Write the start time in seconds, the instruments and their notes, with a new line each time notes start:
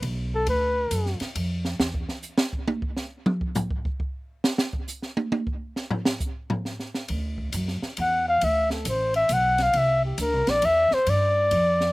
0.02 upright bass B1, ride
0.34 flugelhorn A4
0.47 upright bass D2, flugelhorn B4, ride
0.91 upright bass F#2, hi-hat pedal, ride
1.06 snare
1.20 muted upright bass stroke, snare, ride
1.35 upright bass F2, ride
1.65 snare
1.80 upright bass E2, snare
1.94 kick
2.09 snare
2.23 hi-hat pedal
2.38 snare
2.53 kick
2.68 high tom
2.82 kick
2.97 snare
3.26 mid tom
3.41 kick
3.55 floor tom, hi-hat pedal
3.71 kick
3.85 kick
4.00 kick
4.44 snare
4.58 snare
4.73 kick
4.88 hi-hat pedal
5.02 snare
5.17 high tom
5.32 high tom
5.47 kick
5.76 snare
5.91 floor tom
6.05 snare
6.20 kick, hi-hat pedal
6.50 floor tom
6.65 snare
6.80 snare
6.94 snare
7.08 upright bass D2, ride
7.38 kick
7.53 upright bass F#2, hi-hat pedal, ride
7.68 snare
7.82 muted upright bass stroke, snare
7.97 upright bass E2, flugelhorn F#5, ride
8.28 flugelhorn F5
8.41 upright bass D2, flugelhorn E5, ride
8.70 flugelhorn A4, snare
8.85 upright bass A1, flugelhorn C5, hi-hat pedal, ride
9.14 flugelhorn E5, ride
9.29 upright bass B1, hi-hat pedal, ride
9.33 flugelhorn F#5
9.58 snare, ride
9.62 flugelhorn F5
9.73 upright bass C2, ride
9.77 flugelhorn E5
10.05 flugelhorn G4
10.18 upright bass D2, flugelhorn A#4, hi-hat pedal, ride
10.33 upright bass C2
10.47 upright bass A#1, flugelhorn D5, snare, ride
10.62 upright bass E2, flugelhorn E5, ride
10.91 flugelhorn C5, muted upright bass stroke, snare
11.06 upright bass G2, flugelhorn D5, ride
11.51 upright bass F2, ride
11.81 snare